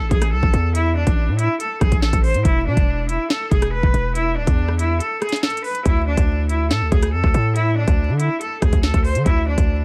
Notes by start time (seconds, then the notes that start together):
0.00 A1
0.11 A1 G#4, kick, closed hi-hat
0.22 cross-stick, closed hi-hat
0.32 C2 A4
0.43 A1, kick
0.54 E2, closed hi-hat
0.75 E4, closed hi-hat
0.96 D4
1.07 A1, kick, closed hi-hat
1.28 A2
1.39 E4, closed hi-hat
1.60 A4, closed hi-hat
1.81 A1 G#4, kick, cross-stick, closed hi-hat
1.92 A1, kick, closed hi-hat
2.02 A4, snare
2.13 A1, kick, closed hi-hat
2.24 C5, open hi-hat
2.34 A2, closed hi-hat
2.45 E1 E4, kick, closed hi-hat
2.66 B2 D4
2.77 E1, kick, closed hi-hat
3.09 E4, closed hi-hat
3.30 A4, snare, closed hi-hat
3.51 E1 G#4, kick, closed hi-hat
3.62 cross-stick, closed hi-hat
3.73 B4
3.83 E1, kick
3.94 E1, closed hi-hat
4.15 E4, closed hi-hat
4.37 D1 D4
4.47 E2, kick, closed hi-hat
4.68 cross-stick
4.79 E4, closed hi-hat
5.00 A4, closed hi-hat
5.22 G#4, cross-stick, closed hi-hat
5.29 snare, closed hi-hat
5.36 closed hi-hat
5.43 A4, snare, closed hi-hat
5.50 closed hi-hat
5.57 closed hi-hat
5.64 B4, open hi-hat
5.75 closed hi-hat
5.85 D2 E4, kick, closed hi-hat
6.07 D4
6.17 D2, kick, closed hi-hat
6.49 E4, closed hi-hat
6.70 A2 A4, snare, closed hi-hat
6.81 D2
6.92 D2 G#4, kick, closed hi-hat
7.03 cross-stick, closed hi-hat
7.13 F2 A4
7.24 D2, kick
7.34 A2, closed hi-hat
7.56 E4, closed hi-hat
7.77 D4
7.88 D2, kick, closed hi-hat
8.09 D3
8.19 E4, closed hi-hat
8.41 A4, closed hi-hat
8.62 D2 G#4, kick, cross-stick, closed hi-hat
8.73 D2, kick, closed hi-hat
8.83 A4, snare
8.94 D2, kick, closed hi-hat
9.05 C5, open hi-hat
9.15 D3, closed hi-hat
9.26 D2 E4, kick, closed hi-hat
9.47 D4
9.58 D2, kick, closed hi-hat